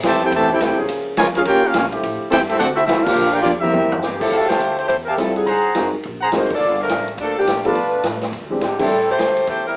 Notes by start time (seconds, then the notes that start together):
0.03 F2 C3 E3 A3 G4 C5 E5 A5, snare, hi-hat pedal, ride
0.23 C4 E4 G4 A4 C5 G5
0.31 E2 C3 A3 G4 C5 E5 A5, ride
0.36 E3
0.52 C4 E4 G4 A4 C5 G5
0.59 D2 C4 E4 G4 A4 C5 G5, snare, hi-hat pedal, ride
0.70 C2
0.76 A1 F3 A#3 C#4 G#4
0.88 C#2, ride
1.17 F2 C#3 F3 G#3 F4 A#4 C#5 G#5, snare, hi-hat pedal, ride
1.35 G#3 C#4 F4 G#4 A#4 F5, ride
1.45 D#2 A#3 C#4 F4 G4 A#4 C#5 G5, ride
1.64 A#3 C#4 F4 G4 A#4 F5
1.74 A#1 A#3 C#4 F4 G4 A#4 F5, snare, hi-hat pedal, ride
1.91 F3 A3 E4 G4, ride
2.03 A1, ride
2.21 muted upright bass stroke
2.31 G1 C4 E4 G4 A4 C5 G5, snare, hi-hat pedal, ride
2.48 A3 C4 E4 G4 A4 E5, ride
2.57 D2 A3 C4 D4 F#4 A4 C5 F#5, ride
2.75 C4 E4 F#4 A4 E5
2.86 C2 C4 E4 F#4 A4 E5, snare, hi-hat pedal, ride
3.03 A#3 D4 F4 G4 A#4 F5, kick, crash
3.07 F3
3.15 A#1
3.31 A#3 D4 F4 G4 A#4 D5 G5
3.42 F2 F3 A#3 D4 F4 G4 D5, hi-hat pedal, high tom
3.60 G3 A#3 C4 E4 G4 A#4 E5, high tom
3.74 E2, high tom
3.92 floor tom
4.02 G2 E3 A#3 C4 G4, snare, hi-hat pedal
4.20 F3 G3 A3 C4 E4 G4 A4, kick, crash
4.32 F2 G4 E5 F5 A5
4.48 A3 E4 G4 C5, snare, ride
4.60 D2, hi-hat pedal
4.79 A3 E4 G4 C5, ride
4.87 E2 A3 E4 G4 C5, ride
5.05 G3 C4 E4 G4 A#4 E5 F5 A5
5.16 C2 G3 C4 E4 F4 A4, snare, hi-hat pedal, ride
5.35 F#3 C4 D#4 G#4, ride
5.47 G#1 G#4 C5 F#5 A#5, ride
5.65 muted upright bass stroke
5.75 F#1 G#3 C4 D#4 F#4 A#4, snare, hi-hat pedal, ride
5.93 muted upright bass stroke
6.03 A#1, ride
6.21 G#4 C5 F#5 A#5
6.32 F1 G#3 C4 D#4 F#4 A#4, snare, hi-hat pedal, ride
6.36 A#3 D#4 F#4 C5
6.50 kick, crash
6.54 A#3 F4 A4 D5
6.61 G1
6.82 F3 A3 D4 A#4
6.88 A1, snare, hi-hat pedal, ride
7.08 ride
7.17 D2 F3 D4 A4, ride
7.21 A#3
7.38 F3 A#3 D4 G4
7.45 A2, snare, hi-hat pedal, ride
7.65 F3 A3 B3 D4 F4 A4 B4 D5 A5, ride
7.75 B2, ride
8.03 A2, snare, hi-hat pedal, ride
8.21 snare, ride
8.32 E2, ride
8.42 D2
8.50 C2 E3 G#3 C4 D4 G4
8.60 G#2, snare, hi-hat pedal, ride
8.64 D3 G#3 C4 G4
8.79 E3 G3 A3 C4 D4 E4 A4 C5 G5, kick, crash
8.89 A2
9.10 A3 E4 G4 C5
9.18 D2, snare, hi-hat pedal, ride
9.37 ride
9.47 E2 A3 E4 G4 C5, ride
9.67 G3 C4 E4 A#4